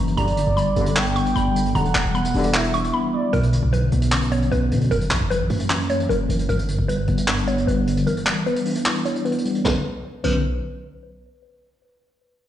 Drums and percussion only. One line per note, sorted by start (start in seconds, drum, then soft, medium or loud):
0.07 closed hi-hat medium
0.17 closed hi-hat medium
0.27 closed hi-hat medium
0.37 closed hi-hat medium
0.57 closed hi-hat medium
0.76 closed hi-hat medium
0.86 closed hi-hat medium
0.96 clap loud
0.96 closed hi-hat medium
1.06 closed hi-hat medium
1.16 closed hi-hat medium
1.26 closed hi-hat medium
1.36 closed hi-hat medium
1.56 closed hi-hat medium
1.65 closed hi-hat medium
1.75 closed hi-hat medium
1.85 closed hi-hat medium
1.95 clap loud
1.95 closed hi-hat medium
2.15 closed hi-hat soft
2.25 closed hi-hat medium
2.34 open hi-hat medium
2.44 closed hi-hat medium
2.54 clap loud
2.54 closed hi-hat medium
2.64 closed hi-hat medium
2.73 closed hi-hat medium
2.84 closed hi-hat medium
3.33 closed hi-hat medium
3.43 closed hi-hat medium
3.53 closed hi-hat medium
3.73 closed hi-hat medium
3.92 closed hi-hat medium
4.02 closed hi-hat medium
4.12 clap loud
4.12 closed hi-hat medium
4.22 closed hi-hat medium
4.31 closed hi-hat medium
4.42 closed hi-hat medium
4.52 closed hi-hat medium
4.71 closed hi-hat medium
4.81 closed hi-hat medium
4.91 closed hi-hat medium
5.01 closed hi-hat medium
5.10 clap medium
5.10 closed hi-hat medium
5.31 closed hi-hat medium
5.50 open hi-hat medium
5.60 closed hi-hat medium
5.70 clap loud
5.70 closed hi-hat medium
5.80 closed hi-hat medium
5.89 closed hi-hat medium
6.00 closed hi-hat medium
6.10 closed hi-hat medium
6.29 closed hi-hat medium
6.39 closed hi-hat medium
6.49 closed hi-hat medium
6.59 closed hi-hat medium
6.68 closed hi-hat medium
6.89 closed hi-hat medium
7.07 closed hi-hat medium
7.17 closed hi-hat medium
7.28 clap loud
7.28 closed hi-hat medium
7.38 closed hi-hat medium
7.47 closed hi-hat medium
7.58 closed hi-hat medium
7.68 closed hi-hat medium
7.87 closed hi-hat medium
7.97 closed hi-hat medium
8.07 closed hi-hat medium
8.17 closed hi-hat medium
8.26 clap loud
8.26 closed hi-hat medium
8.46 closed hi-hat soft
8.56 closed hi-hat medium
8.65 open hi-hat medium
8.75 closed hi-hat medium
8.86 clap loud
8.86 closed hi-hat medium
8.95 closed hi-hat medium
9.05 closed hi-hat medium
9.16 closed hi-hat medium
9.25 closed hi-hat medium
9.32 closed hi-hat medium
9.38 closed hi-hat medium
9.45 closed hi-hat medium
9.55 closed hi-hat medium
9.65 snare medium
10.24 crash medium